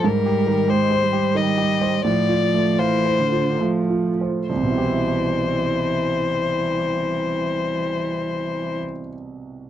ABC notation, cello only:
X:1
M:3/4
L:1/8
Q:1/4=69
K:C
V:1 name="Cello" clef=bass
G,2 _A, G,3 | F,2 E, D, F, z | E,6- | E,6 |]